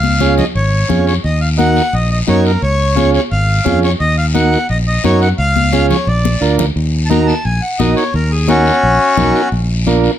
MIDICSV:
0, 0, Header, 1, 5, 480
1, 0, Start_track
1, 0, Key_signature, -6, "minor"
1, 0, Tempo, 345224
1, 1724, Time_signature, 4, 2, 24, 8
1, 9403, Key_signature, -6, "minor"
1, 14164, End_track
2, 0, Start_track
2, 0, Title_t, "Accordion"
2, 0, Program_c, 0, 21
2, 0, Note_on_c, 0, 77, 101
2, 477, Note_off_c, 0, 77, 0
2, 529, Note_on_c, 0, 75, 88
2, 636, Note_off_c, 0, 75, 0
2, 773, Note_on_c, 0, 73, 82
2, 1465, Note_off_c, 0, 73, 0
2, 1486, Note_on_c, 0, 73, 81
2, 1594, Note_off_c, 0, 73, 0
2, 1728, Note_on_c, 0, 75, 98
2, 1950, Note_off_c, 0, 75, 0
2, 1962, Note_on_c, 0, 77, 87
2, 2071, Note_off_c, 0, 77, 0
2, 2208, Note_on_c, 0, 78, 98
2, 2701, Note_off_c, 0, 78, 0
2, 2702, Note_on_c, 0, 75, 86
2, 2916, Note_off_c, 0, 75, 0
2, 2937, Note_on_c, 0, 75, 86
2, 3042, Note_off_c, 0, 75, 0
2, 3183, Note_on_c, 0, 73, 95
2, 3398, Note_off_c, 0, 73, 0
2, 3418, Note_on_c, 0, 70, 82
2, 3636, Note_off_c, 0, 70, 0
2, 3649, Note_on_c, 0, 73, 95
2, 4318, Note_off_c, 0, 73, 0
2, 4374, Note_on_c, 0, 73, 79
2, 4481, Note_off_c, 0, 73, 0
2, 4608, Note_on_c, 0, 77, 91
2, 5277, Note_off_c, 0, 77, 0
2, 5339, Note_on_c, 0, 73, 85
2, 5444, Note_off_c, 0, 73, 0
2, 5561, Note_on_c, 0, 75, 102
2, 5786, Note_off_c, 0, 75, 0
2, 5813, Note_on_c, 0, 77, 93
2, 5920, Note_off_c, 0, 77, 0
2, 6050, Note_on_c, 0, 78, 91
2, 6494, Note_off_c, 0, 78, 0
2, 6535, Note_on_c, 0, 75, 91
2, 6641, Note_off_c, 0, 75, 0
2, 6780, Note_on_c, 0, 75, 88
2, 6996, Note_off_c, 0, 75, 0
2, 7015, Note_on_c, 0, 73, 89
2, 7233, Note_off_c, 0, 73, 0
2, 7250, Note_on_c, 0, 78, 89
2, 7357, Note_off_c, 0, 78, 0
2, 7485, Note_on_c, 0, 77, 104
2, 8154, Note_off_c, 0, 77, 0
2, 8201, Note_on_c, 0, 73, 74
2, 8449, Note_off_c, 0, 73, 0
2, 8452, Note_on_c, 0, 74, 75
2, 9117, Note_off_c, 0, 74, 0
2, 9812, Note_on_c, 0, 81, 59
2, 9849, Note_off_c, 0, 81, 0
2, 9874, Note_on_c, 0, 82, 93
2, 10104, Note_on_c, 0, 81, 74
2, 10111, Note_off_c, 0, 82, 0
2, 10346, Note_off_c, 0, 81, 0
2, 10354, Note_on_c, 0, 80, 76
2, 10591, Note_off_c, 0, 80, 0
2, 10591, Note_on_c, 0, 78, 79
2, 10829, Note_off_c, 0, 78, 0
2, 10831, Note_on_c, 0, 75, 82
2, 11070, Note_off_c, 0, 75, 0
2, 11075, Note_on_c, 0, 73, 79
2, 11312, Note_off_c, 0, 73, 0
2, 11330, Note_on_c, 0, 70, 84
2, 11559, Note_off_c, 0, 70, 0
2, 11559, Note_on_c, 0, 68, 80
2, 11789, Note_on_c, 0, 61, 81
2, 11794, Note_off_c, 0, 68, 0
2, 11796, Note_on_c, 0, 66, 103
2, 13182, Note_off_c, 0, 61, 0
2, 13197, Note_off_c, 0, 66, 0
2, 14164, End_track
3, 0, Start_track
3, 0, Title_t, "Transistor combo organ"
3, 0, Program_c, 1, 18
3, 283, Note_on_c, 1, 61, 71
3, 291, Note_on_c, 1, 65, 64
3, 292, Note_on_c, 1, 68, 83
3, 619, Note_off_c, 1, 61, 0
3, 623, Note_off_c, 1, 65, 0
3, 624, Note_off_c, 1, 68, 0
3, 1234, Note_on_c, 1, 61, 66
3, 1239, Note_on_c, 1, 65, 62
3, 1245, Note_on_c, 1, 68, 71
3, 1576, Note_off_c, 1, 61, 0
3, 1578, Note_off_c, 1, 65, 0
3, 1581, Note_off_c, 1, 68, 0
3, 2188, Note_on_c, 1, 63, 69
3, 2197, Note_on_c, 1, 66, 67
3, 2202, Note_on_c, 1, 70, 84
3, 2533, Note_off_c, 1, 63, 0
3, 2537, Note_off_c, 1, 66, 0
3, 2540, Note_off_c, 1, 70, 0
3, 3158, Note_on_c, 1, 63, 73
3, 3163, Note_on_c, 1, 66, 65
3, 3172, Note_on_c, 1, 70, 77
3, 3498, Note_off_c, 1, 63, 0
3, 3501, Note_off_c, 1, 66, 0
3, 3505, Note_off_c, 1, 70, 0
3, 4110, Note_on_c, 1, 61, 77
3, 4117, Note_on_c, 1, 65, 70
3, 4124, Note_on_c, 1, 68, 84
3, 4454, Note_off_c, 1, 61, 0
3, 4457, Note_off_c, 1, 65, 0
3, 4461, Note_off_c, 1, 68, 0
3, 5069, Note_on_c, 1, 61, 68
3, 5078, Note_on_c, 1, 65, 64
3, 5084, Note_on_c, 1, 68, 78
3, 5413, Note_off_c, 1, 61, 0
3, 5418, Note_off_c, 1, 65, 0
3, 5421, Note_off_c, 1, 68, 0
3, 6038, Note_on_c, 1, 63, 77
3, 6038, Note_on_c, 1, 66, 71
3, 6046, Note_on_c, 1, 70, 81
3, 6377, Note_off_c, 1, 63, 0
3, 6378, Note_off_c, 1, 66, 0
3, 6382, Note_off_c, 1, 70, 0
3, 7008, Note_on_c, 1, 63, 70
3, 7009, Note_on_c, 1, 66, 66
3, 7017, Note_on_c, 1, 70, 78
3, 7342, Note_off_c, 1, 63, 0
3, 7342, Note_off_c, 1, 66, 0
3, 7346, Note_off_c, 1, 70, 0
3, 7959, Note_on_c, 1, 61, 71
3, 7963, Note_on_c, 1, 65, 70
3, 7968, Note_on_c, 1, 68, 82
3, 8297, Note_off_c, 1, 61, 0
3, 8299, Note_off_c, 1, 65, 0
3, 8302, Note_off_c, 1, 68, 0
3, 8911, Note_on_c, 1, 62, 71
3, 8919, Note_on_c, 1, 65, 65
3, 8924, Note_on_c, 1, 70, 75
3, 9253, Note_off_c, 1, 62, 0
3, 9257, Note_off_c, 1, 65, 0
3, 9260, Note_off_c, 1, 70, 0
3, 9866, Note_on_c, 1, 63, 76
3, 9877, Note_on_c, 1, 66, 64
3, 9877, Note_on_c, 1, 70, 82
3, 10211, Note_off_c, 1, 63, 0
3, 10216, Note_off_c, 1, 66, 0
3, 10216, Note_off_c, 1, 70, 0
3, 10836, Note_on_c, 1, 63, 65
3, 10844, Note_on_c, 1, 66, 62
3, 10846, Note_on_c, 1, 70, 73
3, 11176, Note_off_c, 1, 63, 0
3, 11180, Note_off_c, 1, 66, 0
3, 11181, Note_off_c, 1, 70, 0
3, 11789, Note_on_c, 1, 63, 76
3, 11791, Note_on_c, 1, 66, 63
3, 11800, Note_on_c, 1, 70, 79
3, 12132, Note_off_c, 1, 63, 0
3, 12133, Note_off_c, 1, 66, 0
3, 12138, Note_off_c, 1, 70, 0
3, 12752, Note_on_c, 1, 63, 89
3, 12754, Note_on_c, 1, 66, 78
3, 12765, Note_on_c, 1, 70, 93
3, 13095, Note_off_c, 1, 63, 0
3, 13095, Note_off_c, 1, 66, 0
3, 13101, Note_off_c, 1, 70, 0
3, 13719, Note_on_c, 1, 62, 86
3, 13722, Note_on_c, 1, 65, 84
3, 13729, Note_on_c, 1, 70, 101
3, 14058, Note_off_c, 1, 62, 0
3, 14060, Note_off_c, 1, 65, 0
3, 14063, Note_off_c, 1, 70, 0
3, 14164, End_track
4, 0, Start_track
4, 0, Title_t, "Fingered electric bass"
4, 0, Program_c, 2, 33
4, 0, Note_on_c, 2, 37, 95
4, 574, Note_off_c, 2, 37, 0
4, 766, Note_on_c, 2, 32, 89
4, 1150, Note_off_c, 2, 32, 0
4, 1246, Note_on_c, 2, 41, 92
4, 1630, Note_off_c, 2, 41, 0
4, 1728, Note_on_c, 2, 39, 89
4, 2495, Note_off_c, 2, 39, 0
4, 2686, Note_on_c, 2, 34, 93
4, 3070, Note_off_c, 2, 34, 0
4, 3172, Note_on_c, 2, 42, 90
4, 3554, Note_off_c, 2, 42, 0
4, 3646, Note_on_c, 2, 37, 89
4, 4414, Note_off_c, 2, 37, 0
4, 4609, Note_on_c, 2, 32, 94
4, 4992, Note_off_c, 2, 32, 0
4, 5086, Note_on_c, 2, 41, 100
4, 5470, Note_off_c, 2, 41, 0
4, 5565, Note_on_c, 2, 39, 94
4, 6333, Note_off_c, 2, 39, 0
4, 6529, Note_on_c, 2, 34, 96
4, 6911, Note_off_c, 2, 34, 0
4, 7012, Note_on_c, 2, 42, 93
4, 7393, Note_off_c, 2, 42, 0
4, 7485, Note_on_c, 2, 37, 90
4, 8252, Note_off_c, 2, 37, 0
4, 8439, Note_on_c, 2, 34, 98
4, 8825, Note_off_c, 2, 34, 0
4, 8917, Note_on_c, 2, 38, 87
4, 9304, Note_off_c, 2, 38, 0
4, 9397, Note_on_c, 2, 39, 97
4, 10167, Note_off_c, 2, 39, 0
4, 10359, Note_on_c, 2, 34, 90
4, 10552, Note_off_c, 2, 34, 0
4, 10840, Note_on_c, 2, 34, 76
4, 11033, Note_off_c, 2, 34, 0
4, 11317, Note_on_c, 2, 39, 101
4, 12088, Note_off_c, 2, 39, 0
4, 12280, Note_on_c, 2, 34, 95
4, 12473, Note_off_c, 2, 34, 0
4, 12755, Note_on_c, 2, 35, 80
4, 12951, Note_off_c, 2, 35, 0
4, 13237, Note_on_c, 2, 34, 99
4, 14008, Note_off_c, 2, 34, 0
4, 14164, End_track
5, 0, Start_track
5, 0, Title_t, "Drums"
5, 52, Note_on_c, 9, 63, 70
5, 191, Note_off_c, 9, 63, 0
5, 285, Note_on_c, 9, 63, 81
5, 286, Note_on_c, 9, 73, 71
5, 424, Note_off_c, 9, 63, 0
5, 425, Note_off_c, 9, 73, 0
5, 524, Note_on_c, 9, 73, 66
5, 537, Note_on_c, 9, 64, 72
5, 663, Note_off_c, 9, 73, 0
5, 676, Note_off_c, 9, 64, 0
5, 773, Note_on_c, 9, 74, 70
5, 913, Note_off_c, 9, 74, 0
5, 1249, Note_on_c, 9, 73, 66
5, 1251, Note_on_c, 9, 63, 78
5, 1251, Note_on_c, 9, 64, 80
5, 1388, Note_off_c, 9, 73, 0
5, 1390, Note_off_c, 9, 63, 0
5, 1390, Note_off_c, 9, 64, 0
5, 1491, Note_on_c, 9, 73, 69
5, 1630, Note_off_c, 9, 73, 0
5, 1726, Note_on_c, 9, 74, 73
5, 1865, Note_off_c, 9, 74, 0
5, 2208, Note_on_c, 9, 73, 70
5, 2214, Note_on_c, 9, 63, 81
5, 2347, Note_off_c, 9, 73, 0
5, 2353, Note_off_c, 9, 63, 0
5, 2448, Note_on_c, 9, 73, 69
5, 2587, Note_off_c, 9, 73, 0
5, 2683, Note_on_c, 9, 74, 73
5, 2822, Note_off_c, 9, 74, 0
5, 3163, Note_on_c, 9, 73, 68
5, 3170, Note_on_c, 9, 63, 81
5, 3302, Note_off_c, 9, 73, 0
5, 3309, Note_off_c, 9, 63, 0
5, 3405, Note_on_c, 9, 73, 72
5, 3544, Note_off_c, 9, 73, 0
5, 3646, Note_on_c, 9, 74, 73
5, 3785, Note_off_c, 9, 74, 0
5, 4127, Note_on_c, 9, 73, 73
5, 4135, Note_on_c, 9, 63, 81
5, 4266, Note_off_c, 9, 73, 0
5, 4274, Note_off_c, 9, 63, 0
5, 4371, Note_on_c, 9, 73, 63
5, 4510, Note_off_c, 9, 73, 0
5, 4609, Note_on_c, 9, 74, 75
5, 4748, Note_off_c, 9, 74, 0
5, 5089, Note_on_c, 9, 73, 66
5, 5092, Note_on_c, 9, 63, 82
5, 5092, Note_on_c, 9, 64, 89
5, 5228, Note_off_c, 9, 73, 0
5, 5231, Note_off_c, 9, 63, 0
5, 5231, Note_off_c, 9, 64, 0
5, 5327, Note_on_c, 9, 73, 72
5, 5467, Note_off_c, 9, 73, 0
5, 5565, Note_on_c, 9, 74, 72
5, 5704, Note_off_c, 9, 74, 0
5, 6041, Note_on_c, 9, 73, 73
5, 6051, Note_on_c, 9, 63, 81
5, 6180, Note_off_c, 9, 73, 0
5, 6190, Note_off_c, 9, 63, 0
5, 6287, Note_on_c, 9, 73, 72
5, 6426, Note_off_c, 9, 73, 0
5, 6523, Note_on_c, 9, 74, 74
5, 6662, Note_off_c, 9, 74, 0
5, 7006, Note_on_c, 9, 73, 72
5, 7013, Note_on_c, 9, 63, 88
5, 7145, Note_off_c, 9, 73, 0
5, 7152, Note_off_c, 9, 63, 0
5, 7246, Note_on_c, 9, 73, 66
5, 7385, Note_off_c, 9, 73, 0
5, 7484, Note_on_c, 9, 74, 70
5, 7623, Note_off_c, 9, 74, 0
5, 7735, Note_on_c, 9, 63, 72
5, 7874, Note_off_c, 9, 63, 0
5, 7964, Note_on_c, 9, 73, 73
5, 7971, Note_on_c, 9, 63, 78
5, 8104, Note_off_c, 9, 73, 0
5, 8110, Note_off_c, 9, 63, 0
5, 8207, Note_on_c, 9, 73, 70
5, 8212, Note_on_c, 9, 64, 71
5, 8346, Note_off_c, 9, 73, 0
5, 8351, Note_off_c, 9, 64, 0
5, 8446, Note_on_c, 9, 74, 69
5, 8585, Note_off_c, 9, 74, 0
5, 8693, Note_on_c, 9, 63, 78
5, 8832, Note_off_c, 9, 63, 0
5, 8929, Note_on_c, 9, 73, 72
5, 9068, Note_off_c, 9, 73, 0
5, 9164, Note_on_c, 9, 64, 98
5, 9168, Note_on_c, 9, 73, 68
5, 9303, Note_off_c, 9, 64, 0
5, 9307, Note_off_c, 9, 73, 0
5, 9412, Note_on_c, 9, 74, 69
5, 9551, Note_off_c, 9, 74, 0
5, 9884, Note_on_c, 9, 73, 68
5, 9886, Note_on_c, 9, 63, 76
5, 10023, Note_off_c, 9, 73, 0
5, 10025, Note_off_c, 9, 63, 0
5, 10124, Note_on_c, 9, 73, 61
5, 10263, Note_off_c, 9, 73, 0
5, 10358, Note_on_c, 9, 74, 71
5, 10497, Note_off_c, 9, 74, 0
5, 10836, Note_on_c, 9, 73, 68
5, 10843, Note_on_c, 9, 63, 84
5, 10975, Note_off_c, 9, 73, 0
5, 10982, Note_off_c, 9, 63, 0
5, 11075, Note_on_c, 9, 73, 72
5, 11214, Note_off_c, 9, 73, 0
5, 11317, Note_on_c, 9, 74, 74
5, 11456, Note_off_c, 9, 74, 0
5, 11800, Note_on_c, 9, 63, 82
5, 11806, Note_on_c, 9, 73, 76
5, 11939, Note_off_c, 9, 63, 0
5, 11945, Note_off_c, 9, 73, 0
5, 12040, Note_on_c, 9, 73, 67
5, 12179, Note_off_c, 9, 73, 0
5, 12277, Note_on_c, 9, 74, 68
5, 12416, Note_off_c, 9, 74, 0
5, 12757, Note_on_c, 9, 63, 84
5, 12757, Note_on_c, 9, 64, 81
5, 12761, Note_on_c, 9, 73, 69
5, 12896, Note_off_c, 9, 63, 0
5, 12896, Note_off_c, 9, 64, 0
5, 12900, Note_off_c, 9, 73, 0
5, 13005, Note_on_c, 9, 73, 67
5, 13144, Note_off_c, 9, 73, 0
5, 13240, Note_on_c, 9, 74, 70
5, 13379, Note_off_c, 9, 74, 0
5, 13721, Note_on_c, 9, 73, 69
5, 13726, Note_on_c, 9, 63, 74
5, 13860, Note_off_c, 9, 73, 0
5, 13865, Note_off_c, 9, 63, 0
5, 13956, Note_on_c, 9, 73, 62
5, 14095, Note_off_c, 9, 73, 0
5, 14164, End_track
0, 0, End_of_file